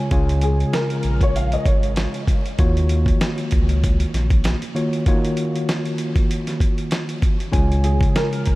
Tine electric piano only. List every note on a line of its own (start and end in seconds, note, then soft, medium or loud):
0.11 2.40 C#3 loud
0.11 2.40 G#3 medium
0.11 2.41 F4 medium
0.11 2.41 C#5 medium
0.11 2.41 G#5 loud
2.59 4.60 D#3 medium
2.59 4.60 A#3 medium
2.59 4.60 F4 medium
2.59 4.60 F#4 medium
2.59 4.60 C#5 loud
4.74 5.04 D#3 medium
4.74 5.04 A#3 medium
4.74 5.04 F4 medium
4.74 5.04 F#4 medium
4.74 5.04 C#5 medium
5.07 7.36 D#3 loud
5.07 7.36 A#3 medium
5.07 7.36 F4 medium
5.07 7.36 F#4 medium
5.07 7.36 C#5 loud
7.52 8.55 C#3 medium
7.52 8.55 G#3 medium
7.52 8.55 F4 medium
7.52 8.55 C#5 medium
7.52 8.55 G#5 loud